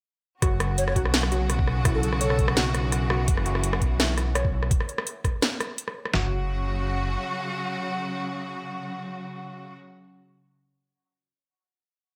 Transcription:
0.42 0.95 F#1 loud
0.42 4.67 C#3 medium
0.42 2.54 F#3 medium
0.42 4.67 F#4 medium
0.42 0.94 F#4 medium
0.42 kick loud
0.42 cross-stick medium
0.42 closed hi-hat medium
0.60 cross-stick medium
0.60 closed hi-hat soft
0.78 0.84 C#5 medium
0.78 closed hi-hat medium
0.87 0.93 C#5 medium
0.87 cross-stick medium
0.96 2.38 B1 medium
0.96 1.13 F#4 medium
0.96 kick medium
0.96 closed hi-hat soft
1.05 cross-stick medium
1.14 snare loud
1.14 closed hi-hat medium
1.23 cross-stick medium
1.32 1.49 F#4 medium
1.32 closed hi-hat soft
1.50 cross-stick medium
1.50 closed hi-hat medium
1.59 kick loud
1.67 cross-stick medium
1.85 2.02 E4 medium
1.85 kick loud
1.85 cross-stick medium
1.85 closed hi-hat medium
1.94 2.00 A4 medium
2.03 2.09 A4 medium
2.03 closed hi-hat soft
2.13 cross-stick soft
2.21 2.48 A4 loud
2.21 2.38 C#5 medium
2.21 closed hi-hat medium
2.30 cross-stick soft
2.39 3.27 B1 medium
2.39 kick medium
2.39 closed hi-hat soft
2.48 cross-stick medium
2.57 4.69 E3 medium
2.57 3.09 F#4 loud
2.57 snare loud
2.57 closed hi-hat medium
2.75 cross-stick medium
2.75 closed hi-hat soft
2.92 cross-stick medium
2.92 closed hi-hat medium
3.10 3.27 F#4 medium
3.10 cross-stick medium
3.28 3.81 F#1 loud
3.28 kick loud
3.28 closed hi-hat medium
3.37 cross-stick medium
3.46 3.63 F#4 medium
3.46 closed hi-hat soft
3.55 cross-stick medium
3.64 closed hi-hat medium
3.73 cross-stick medium
3.82 4.70 B1 medium
3.82 kick medium
3.82 closed hi-hat soft
4.00 4.17 E4 medium
4.00 cross-stick medium
4.00 snare loud
4.00 closed hi-hat medium
4.18 cross-stick medium
4.18 closed hi-hat soft
4.35 4.52 C#5 medium
4.35 cross-stick medium
4.35 closed hi-hat medium
4.45 kick loud
4.63 cross-stick soft
4.71 kick loud
4.71 closed hi-hat medium
4.80 cross-stick medium
4.89 closed hi-hat soft
4.98 cross-stick medium
5.07 closed hi-hat medium
5.24 kick medium
5.24 cross-stick soft
5.24 closed hi-hat soft
5.42 cross-stick medium
5.42 snare loud
5.42 closed hi-hat medium
5.60 cross-stick medium
5.60 closed hi-hat soft
5.78 closed hi-hat medium
5.88 cross-stick medium
6.05 cross-stick medium
6.14 7.17 F#1 loud
6.14 9.76 C#3 medium
6.14 9.76 F#3 medium
6.14 6.30 F#4 medium
6.14 9.76 F#4 medium
6.14 snare loud
6.14 floor tom loud

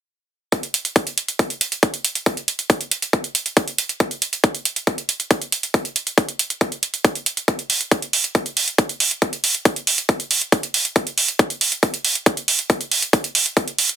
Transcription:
0.52 kick loud
0.52 closed hi-hat medium
0.63 closed hi-hat soft
0.74 closed hi-hat medium
0.85 closed hi-hat soft
0.96 kick loud
0.96 closed hi-hat medium
1.07 closed hi-hat soft
1.18 closed hi-hat medium
1.28 closed hi-hat soft
1.39 kick loud
1.39 closed hi-hat medium
1.50 closed hi-hat soft
1.61 closed hi-hat loud
1.72 closed hi-hat soft
1.83 kick loud
1.83 closed hi-hat medium
1.94 closed hi-hat soft
2.05 closed hi-hat medium
2.15 closed hi-hat soft
2.26 kick loud
2.26 closed hi-hat medium
2.37 closed hi-hat soft
2.48 closed hi-hat medium
2.59 closed hi-hat soft
2.70 kick loud
2.70 closed hi-hat medium
2.81 closed hi-hat soft
2.92 closed hi-hat medium
3.02 closed hi-hat soft
3.13 kick loud
3.13 closed hi-hat medium
3.24 closed hi-hat soft
3.35 closed hi-hat medium
3.46 closed hi-hat soft
3.57 kick loud
3.57 closed hi-hat medium
3.68 closed hi-hat soft
3.78 closed hi-hat medium
3.89 closed hi-hat soft
4.00 kick loud
4.00 closed hi-hat medium
4.11 closed hi-hat soft
4.22 closed hi-hat medium
4.33 closed hi-hat soft
4.44 kick loud
4.44 closed hi-hat medium
4.55 closed hi-hat soft
4.65 closed hi-hat medium
4.76 closed hi-hat soft
4.87 kick loud
4.87 closed hi-hat medium
4.98 closed hi-hat soft
5.09 closed hi-hat medium
5.20 closed hi-hat soft
5.31 kick loud
5.31 closed hi-hat medium
5.42 closed hi-hat soft
5.52 closed hi-hat medium
5.63 closed hi-hat soft
5.74 kick loud
5.74 closed hi-hat medium
5.85 closed hi-hat soft
5.96 closed hi-hat medium
6.07 closed hi-hat soft
6.18 kick loud
6.18 closed hi-hat medium
6.29 closed hi-hat soft
6.39 closed hi-hat medium
6.50 closed hi-hat soft
6.61 kick loud
6.61 closed hi-hat medium
6.72 closed hi-hat soft
6.83 closed hi-hat medium
6.94 closed hi-hat soft
7.05 kick loud
7.05 closed hi-hat medium
7.15 closed hi-hat soft
7.26 closed hi-hat medium
7.37 closed hi-hat soft
7.48 kick loud
7.48 closed hi-hat medium
7.59 closed hi-hat soft
7.70 open hi-hat loud
7.81 closed hi-hat soft
7.91 kick loud
7.91 closed hi-hat medium
8.02 closed hi-hat soft
8.13 open hi-hat loud
8.24 closed hi-hat soft
8.35 kick loud
8.35 closed hi-hat medium
8.46 closed hi-hat soft
8.57 open hi-hat loud
8.68 closed hi-hat soft
8.78 kick loud
8.78 closed hi-hat medium
8.89 closed hi-hat soft
9.00 open hi-hat loud
9.11 closed hi-hat soft
9.22 kick loud
9.22 closed hi-hat medium
9.33 closed hi-hat soft
9.44 open hi-hat loud
9.55 closed hi-hat soft
9.65 kick loud
9.65 closed hi-hat medium
9.76 closed hi-hat soft
9.87 open hi-hat loud
9.98 closed hi-hat soft
10.09 kick loud
10.09 closed hi-hat medium
10.20 closed hi-hat soft
10.31 open hi-hat loud
10.42 closed hi-hat soft
10.52 kick loud
10.52 closed hi-hat medium
10.63 closed hi-hat soft
10.74 open hi-hat loud
10.85 closed hi-hat soft
10.96 kick loud
10.96 closed hi-hat medium
11.07 closed hi-hat soft
11.18 open hi-hat loud
11.28 closed hi-hat soft
11.39 kick loud
11.39 closed hi-hat medium
11.50 closed hi-hat soft
11.61 open hi-hat loud
11.72 closed hi-hat soft
11.83 kick loud
11.83 closed hi-hat medium
11.94 closed hi-hat soft
12.05 open hi-hat loud
12.15 closed hi-hat soft
12.26 kick loud
12.26 closed hi-hat medium
12.37 closed hi-hat soft
12.48 open hi-hat loud
12.59 closed hi-hat soft
12.70 kick loud
12.70 closed hi-hat medium
12.81 closed hi-hat soft
12.92 open hi-hat loud
13.02 closed hi-hat soft
13.13 kick loud
13.13 closed hi-hat medium
13.24 closed hi-hat soft
13.35 open hi-hat loud
13.46 closed hi-hat soft
13.57 kick loud
13.57 closed hi-hat medium
13.68 closed hi-hat soft
13.78 open hi-hat loud
13.89 closed hi-hat soft

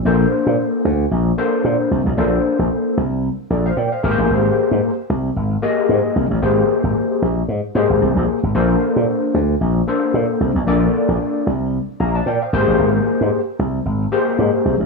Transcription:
0.05 0.25 A#1 loud
0.05 0.88 A#3 medium
0.05 0.88 D4 medium
0.05 0.88 A4 medium
0.05 0.88 C5 medium
0.46 0.55 A#2 medium
0.85 1.05 D2 loud
1.11 1.31 A#1 loud
1.38 2.00 A#3 medium
1.38 2.01 D4 medium
1.38 2.01 A4 medium
1.38 2.01 C5 medium
1.64 1.76 A#2 medium
1.91 2.02 C2 medium
2.06 2.15 B1 medium
2.17 2.37 A#1 medium
2.17 3.00 A#3 medium
2.17 3.00 D4 medium
2.17 3.00 A4 medium
2.17 3.00 C5 medium
2.59 2.68 A#1 medium
2.97 3.28 C2 loud
3.50 3.70 A#1 medium
3.50 3.65 A4 medium
3.50 3.65 D5 medium
3.66 3.77 C5 medium
3.66 3.77 F5 medium
3.77 3.88 A#2 loud
3.77 3.91 D5 medium
3.77 3.91 G5 medium
3.92 4.09 C5 soft
3.92 4.17 F5 medium
4.03 4.14 G#1 medium
4.03 4.89 A#3 medium
4.03 4.89 G4 medium
4.03 4.89 G#4 medium
4.03 4.11 A#4 medium
4.10 4.93 C5 loud
4.18 4.27 A1 medium
4.30 4.50 G#1 loud
4.71 4.80 G#2 medium
5.10 5.29 C2 loud
5.36 5.56 G#1 loud
5.62 6.25 A#3 medium
5.62 6.25 G4 medium
5.62 6.25 G#4 medium
5.62 6.25 D#5 medium
5.89 6.00 G#2 medium
6.16 6.27 C2 medium
6.31 6.39 A1 medium
6.42 6.62 G#1 loud
6.42 7.25 A#3 medium
6.42 7.25 G4 medium
6.42 7.25 G#4 medium
6.42 7.25 C5 medium
6.83 6.92 G#1 medium
7.22 7.42 A#1 medium
7.48 7.60 G#2 loud
7.75 7.86 G#2 loud
7.75 8.38 A#3 medium
7.75 8.38 G4 medium
7.75 8.38 G#4 medium
7.75 8.38 C5 medium
7.90 7.98 G#1 medium
8.01 8.13 C2 medium
8.16 8.25 A#1 medium
8.43 8.52 G#1 medium
8.55 8.75 A#1 loud
8.55 9.37 A#3 medium
8.55 9.37 D4 medium
8.55 9.37 A4 medium
8.55 9.37 C5 medium
8.96 9.05 A#2 medium
9.34 9.54 D2 loud
9.61 9.81 A#1 loud
9.87 10.50 A#3 medium
9.87 10.50 D4 medium
9.87 10.50 A4 medium
9.87 10.50 C5 medium
10.14 10.25 A#2 loud
10.40 10.52 C2 medium
10.55 10.64 B1 medium
10.67 10.87 A#1 medium
10.67 11.49 A#3 medium
10.67 11.49 D4 medium
10.67 11.50 A4 medium
10.67 11.50 D5 medium
11.08 11.17 A#1 medium
11.47 11.77 C2 loud
12.00 12.20 A#1 medium
12.00 12.14 F5 medium
12.00 12.14 A#5 medium
12.15 12.26 D5 medium
12.15 12.26 A5 medium
12.26 12.37 A#2 medium
12.26 12.41 D5 medium
12.26 12.41 G5 medium
12.42 12.52 C5 medium
12.42 12.67 F5 medium
12.53 12.64 G#1 medium
12.53 13.38 A#3 medium
12.53 13.39 G4 medium
12.53 13.39 G#4 medium
12.53 13.39 C5 loud
12.68 12.76 A1 medium
12.79 12.99 G#1 loud
13.21 13.30 G#2 medium
13.59 13.79 C2 medium
13.85 14.05 G#1 loud
14.12 14.75 A#3 medium
14.12 14.75 G4 medium
14.12 14.75 G#4 medium
14.12 14.75 C5 loud
14.39 14.50 G#2 loud
14.65 14.76 C2 medium
14.80 14.86 A1 medium

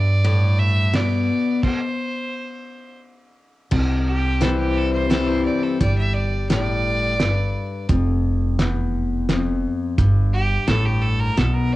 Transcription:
0.00 0.87 G2 medium
0.00 1.28 G2 loud
0.00 0.60 D5 loud
0.24 0.91 A2 medium
0.24 ride medium
0.59 0.96 E5 loud
0.94 1.60 B2 medium
0.94 1.62 D5 medium
0.94 snare medium
0.94 ride medium
1.63 2.98 C5 medium
1.63 kick medium
1.63 crash medium
3.71 5.46 C2 medium
3.71 5.04 C3 medium
3.71 kick loud
3.71 crash loud
4.06 4.43 G4 medium
4.41 5.07 E3 medium
4.41 5.08 G3 medium
4.41 5.08 C4 medium
4.41 5.08 E4 medium
4.41 4.58 A4 medium
4.41 snare medium
4.41 closed hi-hat medium
4.59 4.78 G4 medium
4.77 4.92 A4 medium
4.93 5.12 C5 medium
5.10 5.77 E3 medium
5.10 5.77 G3 medium
5.10 5.77 C4 medium
5.10 5.77 E4 medium
5.10 5.29 A4 medium
5.10 snare medium
5.10 closed hi-hat medium
5.28 5.44 C5 medium
5.45 5.65 D5 medium
5.63 5.80 A4 medium
5.81 7.55 G1 medium
5.81 7.13 G3 medium
5.81 5.97 D5 medium
5.81 kick medium
5.81 closed hi-hat soft
5.98 6.15 E5 medium
6.14 6.49 D5 medium
6.49 7.16 A2 medium
6.49 7.85 D5 loud
6.49 snare medium
6.49 closed hi-hat medium
7.20 7.86 G2 medium
7.20 snare medium
7.20 closed hi-hat medium
7.89 9.63 F1 medium
7.89 8.59 F2 medium
7.89 kick loud
7.89 closed hi-hat medium
8.59 9.25 E2 medium
8.59 snare medium
8.59 closed hi-hat medium
9.29 9.95 F2 medium
9.29 snare medium
9.29 closed hi-hat medium
9.98 10.56 G1 medium
9.98 11.31 G2 medium
9.98 kick loud
9.98 closed hi-hat medium
10.33 10.69 G4 loud
10.67 11.27 A1 medium
10.67 11.34 A2 medium
10.67 10.87 A4 loud
10.67 snare medium
10.67 closed hi-hat medium
10.85 11.03 G4 medium
11.01 11.21 A4 medium
11.20 11.38 A#4 medium
11.37 11.76 B1 medium
11.37 11.76 B2 medium
11.37 11.56 A4 medium
11.37 snare medium
11.37 closed hi-hat medium
11.55 11.74 A#4 medium
11.72 11.76 D5 medium

